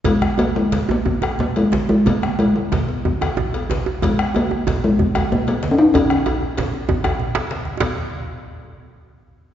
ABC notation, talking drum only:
X:1
M:12/8
L:1/16
Q:3/8=125
K:Abmix
V:1 name="Talking drum"
A,4 B,2 A,4 B,6 B,2 A,4 A,2 | B,4 A,2 A,4 z12 z2 | A,4 B,6 A,4 z2 B,2 B,3 D E2 | D16- D4 z4 |
z24 |]